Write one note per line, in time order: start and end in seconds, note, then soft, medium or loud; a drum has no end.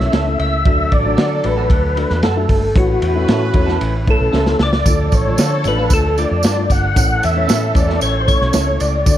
0.00 0.11 B1 loud
0.00 0.36 E3 medium
0.00 0.13 A3 medium
0.00 0.13 C#4 medium
0.00 0.36 C#4 medium
0.00 0.14 E4 medium
0.00 0.14 A4 medium
0.00 0.36 A4 loud
0.00 0.14 E5 medium
0.00 0.38 E5 loud
0.00 snare soft
0.12 0.36 C#2 medium
0.12 0.22 C#4 medium
0.12 0.23 E4 medium
0.12 0.23 A4 loud
0.12 snare loud
0.12 ride medium
0.26 0.53 A3 medium
0.26 0.53 C#4 medium
0.26 0.53 E4 medium
0.26 0.54 A4 medium
0.26 0.53 E5 medium
0.39 0.62 C#2 loud
0.39 0.94 E5 loud
0.39 ride medium
0.65 0.88 D2 loud
0.65 1.40 D3 medium
0.65 2.46 F#3 medium
0.65 0.92 A3 medium
0.65 0.92 D4 medium
0.65 2.46 D4 medium
0.65 0.92 F#4 medium
0.65 0.93 A4 medium
0.65 2.46 A4 loud
0.65 0.92 D5 medium
0.65 kick loud
0.65 ride medium
0.92 1.14 A1 medium
0.92 1.46 D5 loud
0.92 kick medium
0.92 ride medium
1.04 1.32 A3 medium
1.04 1.32 D4 medium
1.04 1.32 F#4 medium
1.04 1.32 A4 medium
1.04 1.32 D5 medium
1.17 1.40 D3 loud
1.17 1.27 D4 medium
1.17 1.28 F#4 medium
1.17 1.28 A4 medium
1.17 snare loud
1.17 ride medium
1.43 1.67 A1 medium
1.43 1.80 A3 medium
1.43 1.80 D4 medium
1.43 1.80 F#4 medium
1.43 1.80 A4 medium
1.43 2.26 B4 loud
1.43 1.81 D5 medium
1.43 ride medium
1.57 1.65 D4 medium
1.57 1.65 F#4 medium
1.57 1.65 A4 medium
1.70 2.04 D2 loud
1.70 kick loud
1.70 ride medium
1.96 2.23 A3 medium
1.96 2.24 D4 medium
1.96 2.24 F#4 medium
1.96 2.24 A4 medium
1.96 2.24 D5 medium
1.96 ride medium
2.10 2.22 E2 loud
2.10 snare soft
2.23 2.46 F#2 loud
2.23 2.33 D4 medium
2.23 2.33 F#4 medium
2.23 2.77 A4 loud
2.23 2.34 A4 loud
2.23 snare loud
2.23 ride medium
2.36 2.63 A3 medium
2.36 2.63 D4 medium
2.36 2.63 F#4 medium
2.36 2.63 A4 medium
2.36 2.63 E5 medium
2.49 2.72 G1 medium
2.49 kick medium
2.49 open hi-hat medium
2.49 ride medium
2.75 2.98 A1 loud
2.75 3.50 A2 medium
2.75 4.56 E3 loud
2.75 3.02 A3 medium
2.75 3.02 C#4 medium
2.75 4.56 C#4 medium
2.75 3.03 E4 medium
2.75 3.78 F#4 medium
2.75 3.03 A4 medium
2.75 4.56 B4 loud
2.75 3.03 C#5 medium
2.75 kick loud
2.75 hi-hat pedal medium
2.75 ride medium
3.02 3.24 E2 medium
3.02 ride medium
3.14 3.42 A3 medium
3.14 3.42 C#4 medium
3.14 3.42 E4 medium
3.14 3.42 A4 medium
3.14 3.42 E5 medium
3.28 3.51 A2 loud
3.28 3.38 C#4 medium
3.28 3.38 E4 medium
3.28 3.39 A4 medium
3.28 snare loud
3.28 ride medium
3.53 3.77 E2 loud
3.53 3.90 A3 medium
3.53 3.90 C#4 medium
3.53 3.90 E4 medium
3.53 3.91 A4 medium
3.53 3.91 C#5 loud
3.53 kick medium
3.53 ride medium
3.66 3.76 C#4 medium
3.66 3.75 E4 medium
3.66 3.75 A4 medium
3.66 snare soft
3.81 4.15 A1 medium
3.81 ride medium
4.06 4.34 A3 medium
4.06 4.34 C#4 medium
4.06 4.34 E4 medium
4.06 4.35 A4 medium
4.06 4.35 C#5 medium
4.06 kick medium
4.06 ride medium
4.10 4.63 A4 loud
4.20 4.32 B1 medium
4.33 4.56 C#2 loud
4.33 4.43 C#4 medium
4.33 4.43 E4 medium
4.33 4.44 A4 loud
4.33 snare medium
4.46 4.74 A3 medium
4.46 4.74 C#4 medium
4.46 4.74 E4 medium
4.46 4.74 A4 medium
4.46 4.74 C#5 medium
4.46 snare medium
4.59 4.82 C#2 medium
4.59 5.15 D5 loud
4.59 snare loud
4.73 snare loud
4.85 5.08 D2 loud
4.85 5.61 D3 medium
4.85 6.66 F3 medium
4.85 5.13 A3 medium
4.85 6.66 D4 medium
4.85 5.13 D4 medium
4.85 5.13 F4 medium
4.85 6.66 A4 loud
4.85 5.13 A4 medium
4.85 5.14 D5 medium
4.85 kick loud
4.85 hi-hat pedal medium
4.85 ride medium
4.85 tambourine medium
5.12 5.35 A1 medium
5.12 5.68 C#5 loud
5.12 kick medium
5.12 ride medium
5.12 tambourine medium
5.26 5.53 A3 medium
5.26 5.53 D4 medium
5.26 5.53 F4 medium
5.26 5.53 A4 medium
5.26 5.53 D5 medium
5.38 5.67 D3 loud
5.38 5.48 D4 medium
5.38 5.48 F4 medium
5.38 5.49 A4 loud
5.38 snare loud
5.38 ride medium
5.38 tambourine loud
5.64 5.87 A1 loud
5.64 6.01 A3 medium
5.64 6.01 D4 medium
5.64 6.01 F4 medium
5.64 6.01 A4 medium
5.64 5.93 B4 medium
5.64 6.02 D5 medium
5.64 ride medium
5.64 tambourine medium
5.77 5.86 D4 medium
5.77 5.86 F4 medium
5.77 5.85 A4 medium
5.90 6.24 D2 loud
5.90 6.20 A4 medium
5.90 kick loud
5.90 ride medium
5.90 tambourine loud
6.17 6.44 A3 medium
6.17 6.45 D4 medium
6.17 6.45 F4 medium
6.17 6.45 A4 medium
6.17 6.45 D5 medium
6.17 6.72 D5 loud
6.17 ride medium
6.17 tambourine medium
6.31 6.42 F2 medium
6.43 6.67 G2 loud
6.43 6.54 D4 medium
6.43 6.54 F4 medium
6.43 6.54 A4 loud
6.43 snare loud
6.43 ride medium
6.43 tambourine loud
6.56 6.84 A3 medium
6.56 6.84 D4 medium
6.56 6.84 F4 medium
6.56 6.84 A4 medium
6.56 6.84 D5 medium
6.70 6.93 G1 loud
6.70 7.25 F#5 loud
6.70 kick loud
6.70 ride medium
6.70 tambourine medium
6.95 7.19 A1 loud
6.95 7.71 A2 medium
6.95 8.76 E3 medium
6.95 7.23 A3 medium
6.95 7.23 C#4 medium
6.95 8.76 C#4 medium
6.95 7.23 E4 medium
6.95 8.76 A4 loud
6.95 7.23 A4 medium
6.95 7.23 C#5 medium
6.95 kick loud
6.95 ride medium
6.95 tambourine medium
7.23 7.46 E2 loud
7.23 7.78 E5 loud
7.23 ride medium
7.23 tambourine medium
7.35 7.62 A3 medium
7.35 7.63 C#4 medium
7.35 7.63 E4 medium
7.35 7.63 A4 medium
7.35 7.63 C#5 medium
7.48 7.72 A2 loud
7.48 7.58 C#4 medium
7.48 7.59 E4 medium
7.48 7.59 A4 medium
7.48 snare loud
7.48 ride medium
7.48 tambourine loud
7.74 7.98 E2 loud
7.74 8.11 A3 medium
7.74 8.11 C#4 medium
7.74 8.11 E4 medium
7.74 8.11 A4 medium
7.74 8.11 C#5 medium
7.74 8.00 D5 medium
7.74 kick loud
7.74 ride medium
7.74 tambourine medium
7.88 7.97 C#4 medium
7.88 7.96 E4 medium
7.88 7.96 A4 medium
7.88 snare soft
8.01 8.35 A1 loud
8.01 8.22 C#5 loud
8.01 ride medium
8.01 tambourine medium
8.20 8.28 C5 medium
8.26 8.54 A3 medium
8.26 8.54 C#4 medium
8.26 8.55 E4 medium
8.26 8.55 A4 medium
8.26 8.55 C#5 medium
8.26 8.82 C#5 loud
8.26 kick loud
8.26 ride medium
8.26 tambourine medium
8.41 8.52 B1 loud
8.41 snare soft
8.53 8.77 C#2 medium
8.53 8.63 C#4 medium
8.53 8.64 E4 medium
8.53 8.64 A4 loud
8.53 snare loud
8.53 ride medium
8.53 tambourine loud
8.66 8.94 A3 medium
8.66 8.94 C#4 medium
8.66 8.94 E4 medium
8.66 8.94 A4 medium
8.66 8.94 C#5 medium
8.80 9.03 C#2 medium
8.80 9.18 D5 loud
8.80 ride medium
8.80 tambourine medium
9.05 9.18 D2 loud
9.05 9.18 D3 medium
9.05 9.18 A3 medium
9.05 9.18 D4 medium
9.05 9.18 F#4 loud
9.05 9.18 F#4 medium
9.05 9.18 A4 medium
9.05 9.18 D5 medium
9.05 kick loud
9.05 ride medium
9.05 tambourine loud